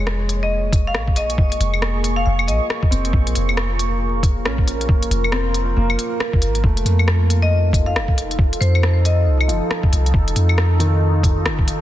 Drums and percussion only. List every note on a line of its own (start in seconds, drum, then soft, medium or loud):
0.07 cross-stick loud
0.29 closed hi-hat medium
0.73 kick loud
0.73 closed hi-hat medium
0.95 cross-stick loud
1.08 kick medium
1.16 closed hi-hat medium
1.30 closed hi-hat soft
1.38 kick loud
1.52 closed hi-hat soft
1.61 closed hi-hat medium
1.74 claves medium
1.82 cross-stick loud
2.04 closed hi-hat medium
2.39 claves medium
2.48 closed hi-hat medium
2.70 cross-stick loud
2.83 kick loud
2.92 closed hi-hat medium
3.05 closed hi-hat soft
3.13 kick loud
3.27 closed hi-hat soft
3.35 closed hi-hat medium
3.49 claves medium
3.57 cross-stick loud
3.79 closed hi-hat medium
4.23 kick loud
4.23 closed hi-hat medium
4.46 cross-stick loud
4.58 kick medium
4.68 closed hi-hat medium
4.81 closed hi-hat soft
4.89 kick loud
5.03 closed hi-hat soft
5.11 closed hi-hat medium
5.24 claves medium
5.32 cross-stick loud
5.54 closed hi-hat medium
5.90 claves medium
5.99 closed hi-hat medium
6.20 cross-stick loud
6.33 kick loud
6.42 closed hi-hat medium
6.55 closed hi-hat soft
6.64 kick loud
6.77 closed hi-hat soft
6.86 closed hi-hat medium
6.99 claves soft
7.08 cross-stick loud
7.30 closed hi-hat medium
7.73 kick loud
7.73 closed hi-hat medium
7.96 cross-stick loud
8.08 kick medium
8.18 closed hi-hat medium
8.31 closed hi-hat soft
8.39 kick loud
8.53 closed hi-hat soft
8.62 closed hi-hat medium
8.75 claves medium
8.83 cross-stick loud
9.05 closed hi-hat medium
9.40 claves medium
9.49 closed hi-hat medium
9.71 cross-stick loud
9.83 kick loud
9.93 closed hi-hat medium
10.06 closed hi-hat soft
10.14 kick loud
10.28 closed hi-hat soft
10.36 closed hi-hat medium
10.49 claves medium
10.58 cross-stick loud
10.80 closed hi-hat medium
11.23 kick medium
11.23 closed hi-hat medium
11.46 cross-stick loud
11.59 kick medium
11.68 closed hi-hat medium